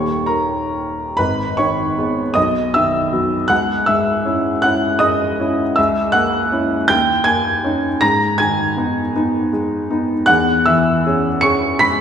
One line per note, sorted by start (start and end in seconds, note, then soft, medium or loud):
0.00 1.14 D#1 soft
0.00 1.14 D#2 soft
0.00 1.14 D#3 soft
0.00 1.14 G3 soft
0.00 1.14 A#3 soft
0.00 0.23 C#5 medium
0.00 0.26 C#6 medium
0.26 1.14 A#4 medium
0.26 1.17 A#5 medium
1.17 2.34 G#1 medium
1.17 1.55 B4 medium
1.17 1.57 B5 medium
1.57 2.22 D#3 soft
1.57 2.33 C#5 medium
1.57 2.36 C#6 medium
1.98 2.33 G#3 soft
1.98 2.33 B3 soft
2.34 3.47 B1 soft
2.34 2.72 D#5 medium
2.34 2.73 D#6 medium
2.74 3.36 D#3 soft
2.74 3.47 E5 medium
2.74 3.50 E6 medium
3.13 3.47 F#3 soft
3.13 3.47 B3 soft
3.48 5.73 C#2 medium
3.48 3.85 F#5 medium
3.48 3.87 F#6 medium
3.86 4.49 G#2 soft
3.86 4.60 E5 medium
3.86 4.64 E6 medium
4.25 4.60 C#4 soft
4.25 4.61 E4 soft
4.62 4.98 C#4 soft
4.62 4.99 E4 soft
4.62 4.99 F#5 medium
4.62 5.01 F#6 medium
4.99 5.61 G#3 soft
4.99 5.72 D#5 medium
4.99 5.76 D#6 medium
5.40 5.74 C#4 soft
5.40 5.74 E4 soft
5.76 6.87 C#2 medium
5.76 6.12 E5 medium
5.76 6.14 E6 medium
6.12 6.75 A#3 soft
6.12 6.85 F#5 medium
6.12 6.89 F#6 medium
6.52 6.86 C#4 soft
6.52 6.86 E4 soft
6.88 7.99 D#2 medium
6.88 7.24 G5 medium
6.88 7.26 G6 medium
7.24 7.87 A#3 soft
7.24 7.98 G#5 medium
7.24 8.01 G#6 medium
7.64 7.99 C#4 soft
7.64 7.99 D#4 soft
8.01 10.24 G#2 medium
8.01 8.37 A#5 medium
8.01 8.39 A#6 medium
8.38 9.01 D#3 soft
8.38 9.12 G#5 medium
8.38 9.15 G#6 medium
8.77 9.11 B3 soft
8.77 9.12 D#4 soft
9.16 9.50 B3 soft
9.16 9.50 D#4 soft
9.53 10.13 G#3 soft
9.91 10.25 B3 soft
9.91 10.24 D#4 soft
10.26 12.01 E2 medium
10.26 10.63 F#5 medium
10.26 10.65 F#6 loud
10.66 11.27 E3 soft
10.66 11.37 E5 medium
10.66 11.41 E6 medium
11.06 11.39 C#4 soft
11.06 11.39 G#4 soft
11.41 11.76 C#4 soft
11.41 11.76 G#4 soft
11.41 11.77 C#6 medium
11.41 11.79 C#7 medium
11.79 12.01 G#3 soft
11.79 12.01 B5 medium
11.79 12.01 B6 loud